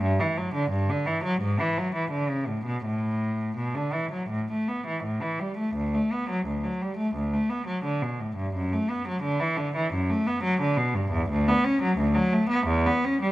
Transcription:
cello
0.01 G2
0.20 E3
0.38 F#3
0.55 D3
0.71 G2
0.90 D3
1.06 E3
1.24 F#3
1.41 G#2
1.60 E3
1.78 F#3
1.95 E3
2.11 D3
2.29 C#3
2.48 A2
2.66 B2
2.85 A2
3.57 B2
3.75 D3
3.94 E3
4.12 F#3
4.29 A2
4.52 A3
4.68 B3
4.87 E3
5.04 A2
5.22 E3
5.40 G3
5.57 A3
5.75 D2
5.95 A3
6.12 B3
6.30 F#3
6.46 D2
6.64 F#3
6.82 G3
6.97 A3
7.15 D2
7.33 A3
7.49 B3
7.67 F#3
7.84 D3
8.02 B2
8.20 A2
8.36 G2
8.55 F#2
8.73 A3
8.90 B3
9.08 F#3
9.23 D3
9.40 E3
9.57 D3
9.76 E3
9.94 F#2
10.10 A3
10.27 B3
10.43 F#3
10.61 D3
10.77 B2
10.95 G2
11.12 E2
11.30 D2
11.48 B3
11.64 C#4
11.82 F#3
11.98 D2
12.15 F#3
12.33 A3
12.49 B3
12.67 E2
12.86 B3
13.05 C#4
13.22 G3

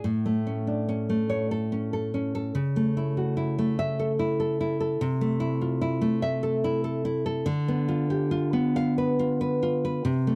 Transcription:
nylon-string guitar
0.04 A2
0.26 A3
0.47 C#4
0.67 D4
0.89 C#4
1.09 A3
1.30 C#5
1.51 A4
1.72 C#4
1.93 A4
2.14 C#4
2.35 A4
2.55 C#3
2.76 A3
2.97 E4
3.17 F#4
3.37 E4
3.58 A3
3.79 E5
3.99 A4
4.19 E4
4.40 A4
4.61 E4
4.80 A4
5.01 C3
5.21 A3
5.40 E4
5.61 F4
5.81 E4
6.01 A3
6.22 E5
6.43 A4
6.64 E4
6.84 A4
7.05 E4
7.26 A4
7.46 D3
7.68 B3
7.88 F4
8.10 G4
8.31 F4
8.53 B3
8.76 F5
8.98 B4
9.19 F4
9.41 B4
9.63 F4
9.85 B4
10.05 C3
10.27 A3

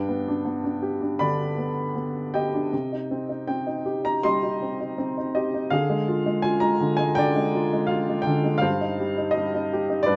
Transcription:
upright piano
Already playing: G2 D4 B4 G5
0.09 B3
0.28 D4
0.45 B3
0.64 D4
0.82 G4
1.01 D4
1.19 D3 D5 B5
1.58 B3
1.95 B3
2.34 G4 D#5 G5
2.54 D4
2.73 C3
2.93 D#4
3.11 C4
3.29 D#4
3.48 C4 G5
3.67 D#4
3.86 G4
4.04 D#4 A#5
4.23 G3 D#5 C6
4.43 D#4
4.62 C4
4.80 D#4
4.98 C4
5.18 D#4
5.35 G4 D#5
5.54 D#4
5.70 D3 G#4 F5
5.90 G#3
6.08 F4
6.26 G#3
6.42 F4 G#5
6.60 G#3 A#5
6.81 D3
6.97 G#3 G#5
7.15 D3 D5 G5
7.36 G#3
7.55 F4
7.73 G#3
7.87 F5
7.91 F4
8.10 G#3
8.22 G5
8.27 D3
8.44 G#3
8.58 C5 F5
8.62 G2
8.81 D#4
8.99 G3
9.17 D#4
9.31 D#5
9.36 G3
9.54 D#4
9.73 G4
9.90 D#4
10.03 B4 D5
10.08 G2

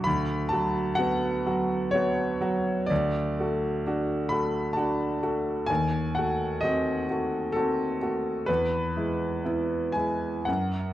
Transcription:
grand piano
0.04 D2 B5
0.49 F#3 F#4 A5
0.95 B3 F#4 F#5
1.46 F#3 F#4
1.91 B3 F#4 C#5
2.41 F#3 F#4
2.86 D2 D5
3.39 A3 F#4
3.87 D4 F#4
4.29 A3 F#4 B5
4.73 D4 F#4 A5
5.23 A3 F#4
5.66 D#2 G#5
6.15 A3 F#4 F#5
6.61 C4 F#4 D#5
7.10 A3 F#4
7.52 C4 F#4 A4
8.02 A3 F#4
8.46 E2 B4
8.96 G#3 E4
9.45 B3 E4
9.92 G#3 E4 G#5
10.45 F#2 F#5

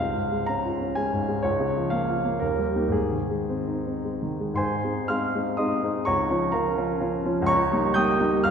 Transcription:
grand piano
Already playing: F5
0.00 C#2
0.15 G#2
0.32 G#3
0.46 C#4 A#5
0.65 F4
0.81 C#4
0.95 G#3 G#5
1.13 G#2
1.28 G#3
1.43 C#2 C#5
1.60 C#3
1.77 F3
1.90 A#3 F5
2.09 F4
2.25 A#3
2.40 D#2 A#4
2.58 G3
2.75 A#3 D#4
2.88 G#2
2.92 G#4
3.13 D#3
3.31 G#3
3.49 C4
3.68 D#4
3.87 C4
4.05 G#3
4.23 D#3
4.40 G#3
4.54 G#2 C5 G#5 C6
4.84 G#3 C4 D#4
5.08 G#3 C4 D#4 F5 C6 F6
5.35 G#3 C4 D#4
5.57 G#3 C4 D#4 D#5 C6 D#6
5.83 G#3 C4 D#4
6.05 C#2 C#5 A#5 C#6
6.30 F3 C#4 F4
6.52 F3 C#4 F4 A#4 F5 A#5
6.77 F3 C#4 F4
7.00 F3 C#4 F4
7.25 F3 C#4 F4
7.42 C#2
7.46 C#5 A#5 C#6
7.72 G3 A#3 D#4
7.94 G3 A#3 D#4 G5 D#6 G6
8.20 G3 A#3 D#4
8.43 C2 F5 F6

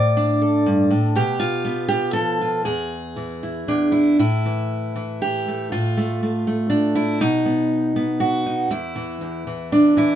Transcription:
steel-string acoustic guitar
Already playing: A2 D5
0.17 D4
0.42 A4
0.66 G2
0.90 A2
1.15 B2 G4
1.40 F4
1.65 B3
1.88 G4
2.13 F3 A4
2.41 F4
2.65 E2 G#4
3.16 E3
3.43 E4
3.68 E2 D4
3.92 E4
4.19 A2 E4
4.46 E3
4.96 E3
5.22 G4
5.48 A3
5.72 A2 F4
5.97 A3
6.23 A3
6.47 A3
6.70 D4
6.95 E4
7.21 B2 D#4
7.46 B3
7.96 B3
8.20 F#4
8.46 D#4
8.71 E2 E4
8.96 E3
9.21 E2
9.47 E3
9.72 D4
9.97 E3 E4

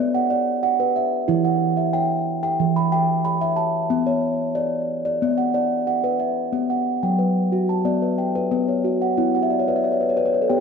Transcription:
steel tongue drum
Already playing: B3 D5
0.15 F#5
0.30 D5
0.63 F#5
0.80 B4
0.96 E5
1.28 E3 E4
1.45 F#5
1.77 E5
1.93 G5
2.43 G5
2.60 E3
2.76 B5
2.92 G5
3.25 B5
3.41 E5
3.56 A5
3.90 B3
4.07 C#5
4.55 D5
5.05 D5
5.22 B3
5.38 F#5
5.54 D5
5.87 F#5
6.04 B4
6.20 E5
6.53 B3
6.70 F#5
7.03 F#3 G5
7.19 B4
7.52 F#4
7.69 A5
7.85 B3 D5
8.02 B4
8.18 G5
8.35 B4 E5
8.51 B3 B4
8.68 C#5
8.85 F#4
9.02 F#5
9.17 B3 E4
9.35 F#5
9.43 E5
9.50 D5
9.59 C#5
9.68 B4 D5
9.76 E5
9.84 D5
9.92 C#5
10.01 B4
10.09 C#5
10.17 B4 D5
10.26 C#5
10.34 B4
10.42 A4
10.49 B3 G4 G5

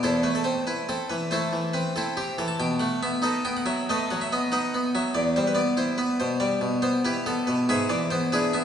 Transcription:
harpsichord
0.03 E2 E4 A4 C5
0.23 A3 B4
0.35 A4
0.44 C4 C5
0.67 E4 B4
0.89 C4 A4
1.10 E3 B4
1.31 A3 E4 A4 C5
1.53 E3
1.73 C4 B4
1.96 C4 E4 A4
2.17 C4 G4
2.38 E3 A4
2.48 A5
2.60 B2 G5
2.80 A3 F#5
3.03 B3 E5
3.22 D#4 A4 B4 D#5
3.45 B3 G5
3.57 F#5
3.66 F#3 E5
3.89 A3 A4 B4 D#5
4.11 F#3 F#5
4.21 E5
4.33 B3 D#5
4.52 D#4 B4 D#5 F#5
4.74 B3
4.95 F#3 E5
5.14 E2 D5
5.36 G3 C5
5.47 B4
5.55 B3 D5
5.77 E4 C5
5.98 B3 B4
6.20 B2 C5
6.40 G3 D5
6.61 B2
6.82 B3 C5
7.05 E4 G4 B4
7.26 B3 A4
7.47 B2 B4
7.69 G#2 G#4 B4 E5
7.89 E3 D5
8.11 B3 C5
8.32 D4 E4 G#4 B4
8.53 B3 E5

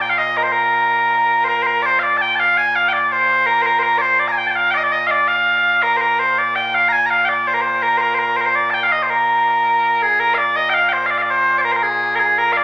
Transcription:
bagpipes
Already playing: A#2
0.01 G5
0.10 F5
0.18 D#5
0.37 A#4
0.43 C5
0.52 A#4
1.45 A#4 C5
1.63 C5
1.67 A#4
1.82 C5 D5
1.99 D5 F5
2.17 A5
2.21 G5
2.35 A5
2.40 F5
2.57 G#5
2.76 F5
2.89 G5
2.93 D5
3.03 D5
3.12 C5
3.46 A#4
3.62 C5
3.66 A#4
3.79 A#4 C5
3.98 C5 D5
4.20 D5
4.28 G#5 A#5
4.38 G5
4.47 G5 A5
4.56 F5
4.71 D5 G5
4.76 D#5
4.83 D5
4.92 D#5
5.07 D5 F5
5.28 F5
5.83 A#4
5.97 C5
6.01 A#4
6.20 C5
6.39 D5
6.56 G5
6.75 F5
6.89 G#5 A#5
7.06 A#5
7.10 F5
7.25 D5 G5
7.48 C5
7.54 A#4
7.61 C5
7.83 A#4
7.98 A#4 C5
8.15 C5
8.19 A#4
8.37 C5
8.41 A#4
8.46 C5
8.55 D5
8.70 G5 A5
8.84 F5
8.92 D#5
9.02 C5
9.10 A#4
10.02 G#4
10.20 A#4
10.34 D5 F5
10.56 D#5
10.70 G5
10.74 F5
10.89 C5 G5
11.06 F5
11.10 D5
11.18 F5
11.22 D5
11.30 C5
11.58 C5 D5
11.65 A#4
11.72 C5
11.76 A#4
11.83 G#4
12.15 G#4 A#4
12.38 A#4
12.53 F5
12.57 D5

